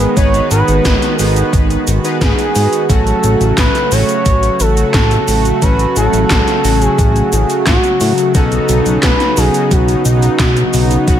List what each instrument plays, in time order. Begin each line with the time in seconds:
Already playing: analog synth pad D#3 G#3 B3 G#4, analog synth lead B4
0.00 closed hi-hat, shaker
0.17 analog synth bass G#1, analog polysynth B3 D#4 G#4 B4, analog synth pad F#4, analog synth lead C#5, kick, closed hi-hat, shaker
0.34 closed hi-hat, shaker
0.51 analog synth bass G#1, analog synth lead B4, closed hi-hat, shaker
0.68 analog synth bass G#1, closed hi-hat, shaker
0.85 analog synth bass G#1, kick, snare, closed hi-hat, shaker
1.02 snare, closed hi-hat, shaker
1.19 analog synth bass G#1, analog polysynth B3 D#4 G#4 B4, analog synth lead A4, open hi-hat, shaker
1.36 closed hi-hat, shaker
1.53 analog synth bass G#1, kick, closed hi-hat, shaker
1.70 closed hi-hat, shaker
1.87 analog synth bass G#1, closed hi-hat, shaker
2.04 analog polysynth B3 D#4 G#4 B4, closed hi-hat, shaker
2.21 analog synth bass G#1, analog polysynth B3 D#4 G#4 B4, analog synth lead G#4, kick, snare, closed hi-hat, shaker
2.39 closed hi-hat, shaker
2.56 analog synth bass G#2, open hi-hat, shaker
2.73 closed hi-hat, shaker
2.89 analog synth bass A1, analog synth pad C#3 F#3 A3, analog polysynth F#3 A3 C#4 F#4, analog synth lead A4, kick, closed hi-hat, shaker
3.07 closed hi-hat, shaker
3.24 analog synth bass A1, closed hi-hat, shaker
3.41 analog synth bass A1, closed hi-hat, shaker
3.58 analog synth bass A1, analog synth lead B4, kick, snare, clap, closed hi-hat, shaker
3.75 snare, closed hi-hat, shaker
3.92 analog synth bass A1, analog polysynth F#3 A3 C#4 F#4, analog synth lead C#5, open hi-hat, shaker
4.09 closed hi-hat, shaker
4.26 analog synth bass A1, kick, closed hi-hat, shaker
4.43 closed hi-hat, shaker
4.60 analog synth bass A1, analog synth lead A4, closed hi-hat, shaker
4.77 closed hi-hat, shaker
4.94 analog synth bass A1, kick, snare, clap, closed hi-hat, shaker
5.11 closed hi-hat, shaker
5.28 analog synth bass A1, open hi-hat, shaker
5.45 closed hi-hat, shaker
5.62 analog synth bass A1, analog polysynth F#3 A3 C#4 F#4, analog synth lead B4, kick, closed hi-hat, shaker
5.79 closed hi-hat, shaker
5.96 analog synth bass A1, analog synth lead A4, closed hi-hat, shaker
6.13 analog synth bass A1, closed hi-hat, shaker
6.30 analog synth bass A1, kick, snare, clap, closed hi-hat, shaker
6.48 snare, closed hi-hat, shaker
6.64 analog synth bass A1, analog polysynth F#3 A3 C#4 F#4, open hi-hat, shaker
6.82 analog synth lead G#4, closed hi-hat, shaker
6.99 analog synth bass A1, kick, closed hi-hat, shaker
7.16 closed hi-hat, shaker
7.33 analog synth bass A1, analog synth lead G#4, closed hi-hat, shaker
7.50 closed hi-hat, shaker
7.67 analog synth bass A1, analog synth lead F#4, kick, snare, clap, closed hi-hat, shaker
7.84 closed hi-hat, shaker
8.01 analog synth bass A2, open hi-hat, shaker
8.18 closed hi-hat, shaker
8.35 analog synth bass B1, analog synth pad B3 D#4, analog polysynth B3 C#4 D#4 F#4, analog synth lead A4, kick, closed hi-hat, shaker
8.52 closed hi-hat, shaker
8.69 analog synth bass B1, closed hi-hat, shaker
8.86 analog synth bass B1, closed hi-hat, shaker
9.03 analog synth bass B1, analog synth lead B4, kick, snare, clap, closed hi-hat, shaker
9.20 snare, closed hi-hat, shaker
9.37 analog synth bass B1, analog polysynth B3 C#4 D#4 F#4, analog synth lead G#4, open hi-hat, shaker
9.54 closed hi-hat, shaker
9.71 analog synth bass B1, analog synth lead F#4, kick, closed hi-hat, shaker
9.88 closed hi-hat, shaker
10.05 analog synth bass B1, closed hi-hat, shaker
10.22 closed hi-hat, shaker
10.39 analog synth bass B1, kick, snare, clap, closed hi-hat, shaker
10.57 closed hi-hat, shaker
10.74 analog synth bass B1, open hi-hat, shaker
10.91 closed hi-hat, shaker
11.07 analog synth bass B1, analog polysynth B3 C#4 D#4 F#4, kick, closed hi-hat, shaker